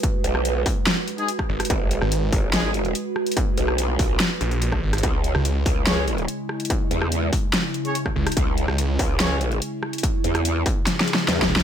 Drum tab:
HH |x-----------x-----------x-----------o-----------x-----------x-----x-----x-----------------x--x--|x-----------x-----------x-----------o-----------x-----------x-----x-----x-----------------x--x--|x-----------x-----------x-----------o-----------x-----------x-----x-----x-----------------x--x--|x-----------x-----------x-----------o-----------x-----------x-----x-----x-----------------x--x--|
SD |------------------r-----------------------------o-----------------------------r-----------r-----|------------------r-----------------------------o-----------------------------------r-----------|------------------r-----------------------------o-----------------------------r-----------r-----|------------------r-----------------------------o-----------------------------------r-----------|
BD |o-----------------------------------o-----------------------------------------o-----------------|o-----------------------------------o-----------------------------------------------------------|o-----------------------------------o-----------------------------------------o-----------------|o-----------------------------------o-----------------------------------------------------------|

HH |x-----------x-----------x-----------o-----------x-----------x-----x-----x-----------------x--x--|x-----------x-----------x-----------o-----------x-----------x-----x-----x-----------------x--x--|x-----------x-----x-----x-----------o-----------x-----------x-----x-----x-----------------x-----|
SD |------------------r-----------------------------o-----------------------------r-----------r-----|------------------r-----------------------------o-----------------------------------r-----------|------------------r-----------------------------o-------o-------o-------o-------o-------o-------|
BD |o-----------------------------------o-----------------------------------------o-----------------|o-----------------------------------o-----------------------------------------------------------|o-----------------------------------o-----------------------------------------o-----------------|